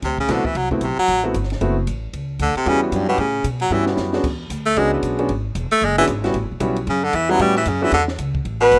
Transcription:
0.02 D2 C3, kick, snare, ride
0.18 C#3, kick
0.28 B1 D3 A3 B3 C4 E4 F#4, kick, snare, hi-hat pedal, ride
0.44 E3, muted upright bass stroke, kick
0.55 C2 F#3, kick, ride
0.71 A2 A3 B3 C4 E4 F#4, kick
0.81 B1 C3, kick, hi-hat pedal, ride
0.98 F#3, muted upright bass stroke
1.08 A1, kick, ride
1.24 A3 B3 C4 E4 F#4
1.34 G1, kick, hi-hat pedal, ride
1.43 snare
1.50 snare, ride
1.61 F#1 A3 B3 C4 E4 F#4, kick, ride
1.87 A1, kick, hi-hat pedal, ride
2.13 C#2, kick, ride
2.39 D2 D3, kick, hi-hat pedal, ride
2.55 C3, muted upright bass stroke, ride
2.66 E2 C#3 G3 B3 C#4 E4 F#4, kick, ride
2.82 E2
2.92 F#2 G2, kick, hi-hat pedal, ride
3.08 B2 G3 B3 C#4 E4 G4
3.18 A2 C#3, kick, ride
3.44 B2, kick, hi-hat pedal, ride
3.60 F#3, ride
3.70 G2 E3 G3 B3 C#4 E4 F#4
3.86 B2, snare
3.97 F#2, snare, hi-hat pedal
4.13 G#3 B3 C#4 D4 F#4, snare
4.23 E2, kick, crash
4.50 D2, kick, hi-hat pedal, ride
4.66 A3
4.76 C#2 G#3 B3 C#4 D4 F#4, kick, ride
4.93 E3
5.03 B1, kick, hi-hat pedal, ride
5.19 G#3 B3 C#4 D4 F#4, ride
5.29 G#1, kick, ride
5.55 E1, kick, hi-hat pedal, ride
5.71 A3, ride
5.81 F#1 G#3, kick, ride
5.98 E3 G#3 B3 C#4 D4 F#4
6.07 G#1, kick, hi-hat pedal, ride
6.24 G3 B3 C#4 E4 F#4, snare, ride
6.34 A1, kick, ride
6.43 G1
6.51 E1
6.60 B1 G3 B3 C#4 E4 F#4, kick, hi-hat pedal, ride
6.76 ride
6.87 F#2 C#3, kick, ride
7.04 D3
7.13 E2 E3, kick, hi-hat pedal, ride
7.29 F#3 G3 B3 C#4 E4 F#4
7.39 A2 G3 B3 C#4 E4 F#4, kick, ride
7.55 E3, snare
7.65 F#2 C#3, kick, hi-hat pedal, ride
7.81 E3 G#3 B3 C#4 D4 F#4
7.92 E2 D3, kick, ride
8.08 snare
8.19 C#2, kick, hi-hat pedal, ride
8.35 kick
8.45 A1, kick, ride
8.60 B2 B4
8.72 F#1, kick, hi-hat pedal, ride

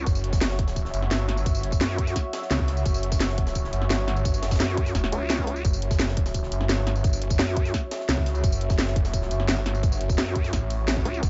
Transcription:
Already playing: F#4 C#5
0.06 F#1 E5, kick, closed hi-hat, tambourine
0.15 closed hi-hat, tambourine
0.24 closed hi-hat
0.33 kick, snare, tambourine
0.41 snare, closed hi-hat, tambourine
0.50 snare
0.59 kick, closed hi-hat
0.68 snare, tambourine
0.76 kick, closed hi-hat, tambourine
0.85 snare
0.94 F#1, closed hi-hat, tambourine
1.02 snare
1.11 snare, closed hi-hat, tambourine
1.29 snare, closed hi-hat, open hi-hat
1.37 closed hi-hat, tambourine
1.46 kick, closed hi-hat, tambourine
1.55 tambourine
1.63 F#1, closed hi-hat
1.72 kick, tambourine
1.81 F#2, snare, closed hi-hat, tambourine
1.90 snare
1.98 kick, closed hi-hat
2.07 snare, tambourine
2.16 kick, snare, closed hi-hat, tambourine
2.33 snare, closed hi-hat, tambourine
2.42 snare
2.51 C#2, snare, closed hi-hat, tambourine
2.59 kick, snare
2.68 snare, open hi-hat
2.77 closed hi-hat, tambourine
2.86 F#1, kick, closed hi-hat, tambourine
2.94 closed hi-hat, tambourine
3.03 closed hi-hat
3.12 kick, snare, tambourine
3.20 snare, closed hi-hat, tambourine
3.29 snare
3.38 kick, closed hi-hat
3.47 snare, tambourine
3.55 kick, closed hi-hat, tambourine
3.64 snare
3.73 F#1, closed hi-hat, tambourine
3.82 snare
3.90 G1, snare, closed hi-hat, tambourine
4.08 snare, closed hi-hat, open hi-hat
4.17 closed hi-hat, tambourine
4.25 kick, closed hi-hat, tambourine
4.34 tambourine
4.43 F#1, snare, closed hi-hat, tambourine
4.51 kick, snare, closed hi-hat, tambourine
4.56 snare, closed hi-hat
4.60 F#2, snare, closed hi-hat, tambourine
4.69 snare
4.77 kick, closed hi-hat
4.86 snare, tambourine
4.95 E1, kick, snare, closed hi-hat, tambourine
5.04 snare
5.12 C#2, closed hi-hat, open hi-hat, tambourine
5.30 snare, closed hi-hat, tambourine
5.38 kick, snare
5.47 closed hi-hat, open hi-hat
5.56 tambourine
5.65 F#1 E5, kick, closed hi-hat, tambourine
5.73 closed hi-hat, tambourine
5.82 closed hi-hat
5.91 kick, snare, tambourine
6.00 snare, closed hi-hat, tambourine
6.08 snare
6.17 kick, closed hi-hat
6.26 snare, tambourine
6.34 kick, closed hi-hat, tambourine
6.43 snare
6.52 F#1, closed hi-hat, tambourine
6.61 snare
6.69 G1, snare, closed hi-hat, tambourine
6.87 snare, closed hi-hat, open hi-hat
6.96 closed hi-hat, tambourine
7.04 kick, closed hi-hat, tambourine
7.13 tambourine
7.22 F#1, closed hi-hat
7.30 kick, tambourine
7.39 F#2, snare, closed hi-hat, tambourine
7.48 snare
7.57 kick, closed hi-hat
7.65 snare, tambourine
7.74 kick, snare, closed hi-hat, tambourine
7.91 snare, closed hi-hat, tambourine
8.00 snare
8.09 C#2, snare, closed hi-hat, tambourine
8.18 kick, snare
8.26 snare, open hi-hat
8.35 closed hi-hat, tambourine
8.44 F#1, kick, closed hi-hat, tambourine
8.52 closed hi-hat, tambourine
8.61 closed hi-hat
8.70 kick, snare, tambourine
8.79 snare, closed hi-hat, tambourine
8.87 snare
8.96 kick, closed hi-hat
9.05 snare, tambourine
9.14 kick, closed hi-hat, tambourine
9.22 snare
9.31 F#1, closed hi-hat, tambourine
9.40 snare
9.48 G1, snare, closed hi-hat, tambourine
9.66 snare, closed hi-hat, open hi-hat
9.75 closed hi-hat, tambourine
9.83 kick, closed hi-hat, tambourine
9.92 tambourine
10.01 F#1, closed hi-hat
10.09 kick, tambourine
10.18 F#2, snare, closed hi-hat, tambourine
10.27 snare
10.36 kick, closed hi-hat
10.44 snare, tambourine
10.53 A1, kick, snare, closed hi-hat, tambourine
10.70 closed hi-hat, open hi-hat, tambourine
10.88 snare, closed hi-hat, tambourine
10.97 kick, snare
11.05 C#2, closed hi-hat, open hi-hat
11.14 tambourine
11.23 F#1 A5, kick, closed hi-hat, tambourine

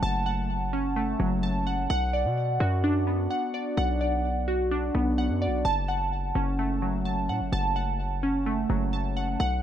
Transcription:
Already playing: F#3 A3 C#4 F#5
0.03 F#1 A5
0.26 F#5
0.73 C#4
0.96 A3
1.20 F#1 F#3
1.43 A5
1.67 F#5
1.90 B1 F#5
2.13 D5
2.25 B2
2.60 F#2 F#4
2.84 D4
3.07 B3
3.31 F#5
3.54 D5
3.77 B1 F#5
4.01 D5
4.48 F#4
4.71 D4
4.95 B1 B3
5.18 F#5
5.30 F#2
5.42 D5
5.47 B1
5.65 F#1 A5
5.88 F#5
6.35 F#1 C#4
6.59 A3
6.82 F#3
7.05 A5
7.29 A2 F#5
7.41 F#1
7.52 F#1 A5
7.76 F#5
8.23 C#4
8.46 A3
8.70 F#1 F#3
8.93 A5
9.17 F#5
9.40 B1 F#5

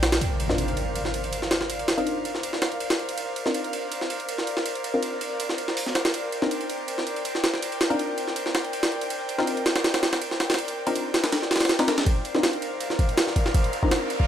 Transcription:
Already playing: A#1 C4 D4 D#4 F4 A#4 D5 G5
0.03 snare, ride
0.12 snare, ride
0.21 A#4 C5 D5 F5, ride, impact
0.40 ride
0.49 C4 D4 D#4 F4 A#4, snare
0.58 ride
0.68 ride
0.77 ride
0.96 ride
1.05 snare
1.14 ride
1.24 ride
1.33 ride
1.42 snare
1.51 snare, ride
1.61 snare
1.70 ride
1.79 ride
1.88 snare, ride
1.98 C4 D4 D#4 F4 A#4, ride
2.07 ride
2.25 ride
2.35 snare
2.43 ride
2.53 snare
2.62 snare, ride
2.72 ride
2.80 ride
2.90 snare, ride
2.99 ride
3.09 ride
3.18 ride
3.36 ride
3.46 C4 D4 D#4 F4 A#4, snare
3.54 ride
3.64 ride
3.73 ride
3.92 ride
4.01 snare
4.10 ride
4.20 ride
4.29 ride
4.38 snare
4.47 ride
4.57 snare
4.66 ride
4.75 ride
4.84 ride
4.94 C4 D4 D#4 F4 A#4
5.03 ride
5.21 ride
5.40 ride
5.49 snare
5.58 ride
5.68 snare
5.77 open hi-hat
5.86 snare
5.95 snare, ride
6.05 snare, ride
6.14 G5, ride
6.32 ride
6.42 C4 D4 D#4 F4 A#4, snare
6.51 ride
6.61 ride
6.70 ride
6.88 ride
6.98 snare
7.07 ride
7.16 ride
7.25 ride
7.35 snare
7.44 snare, ride
7.54 snare
7.62 ride
7.72 ride
7.81 snare, ride
7.90 C4 D4 D#4 F4 A#4, ride
7.99 ride
8.18 ride
8.28 snare
8.36 ride
8.46 snare
8.55 snare, ride
8.64 ride
8.73 ride
8.83 snare, ride
8.92 ride
9.01 ride
9.10 ride
9.29 ride
9.38 C4 D4 D#4 F4 A#4, snare
9.47 ride
9.57 ride
9.66 snare, ride
9.76 snare, ride
9.84 snare, ride
9.94 snare, ride
10.03 snare, ride
10.13 snare, ride
10.22 ride
10.31 snare
10.40 snare, ride
10.50 snare, ride
10.54 snare, ride
10.58 ride
10.68 ride
10.87 C4 D4 D#4 F4 A#4, ride
10.96 ride
11.14 snare, ride
11.24 snare, ride
11.32 snare, ride
11.42 snare
11.51 snare, ride
11.56 snare, ride
11.61 snare, ride
11.65 snare, ride
11.69 snare, ride
11.79 C4 D4 D#4 F4 A#4, snare, ride
11.88 snare, ride
11.98 snare, ride
12.06 A#4 C5 D5 F5, kick, ride, riser
12.25 ride
12.35 C4 D4 D#4 F4 A#4, snare
12.43 snare, ride
12.53 ride
12.62 ride
12.80 ride
12.90 snare
12.99 kick, ride
13.09 ride
13.18 snare, ride
13.27 snare
13.36 kick, ride
13.46 snare
13.54 kick, ride
13.64 ride
13.73 ride
13.83 C4 D4 D#4 F4 A#4, kick
13.91 snare, ride
14.10 ride
14.20 kick

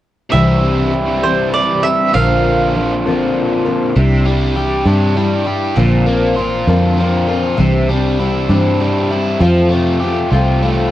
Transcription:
0.32 C2 C3 E3 G3 C4 D4 E4 G4 E5
0.92 G3 C4 D4 G4
1.23 C3 E3 G3 C4 D4 G4 C5
1.54 D5
1.83 G3 C4 D4 G4 E5
2.13 A#1 A#2 D3 F3 A#3 C4 D4 F4 A#4 F5
2.75 F3 C4 D4 A#4
3.06 A#2 D3 F3 C4 D4 A#4
3.65 F3 C4 D4 A#4
3.96 C2 C3 G3 D4 E4 G4
4.24 G3 D4 E4 G4
4.56 G3 D4 E4 G4
4.85 G2 C3 G3 D4 E4 G4
5.14 G3 D4 E4 G4
5.44 D4 E4 G4
5.76 A#1 A#2 D3 F3 C4 D4 A#4
6.06 F3 A#3 C4 D4 A#4
6.36 F3 C4 D4 F4 A#4
6.67 F2 A#2 D3 F3 C4 D4 A#4
6.97 F3 A#3 C4 D4 A#4
7.28 F3 C4 D4 F4 A#4
7.57 C2 C3 E3 G3 C4 D4 G4
7.88 G3 C4 D4 G4
8.19 G3 C4 D4 E4 G4
8.49 G2 C3 E3 G3 C4 D4 G4
8.79 G3 C4 D4 G4
9.11 G3 C4 D4 E4 G4
9.40 F2 F3 A3 C4 F4 G4
9.69 A3 C4 F4 G4
10.02 A3 C4 F4 G4
10.31 C2 F3 A3 C4 F4 G4
10.62 A3 C4 F4 G4

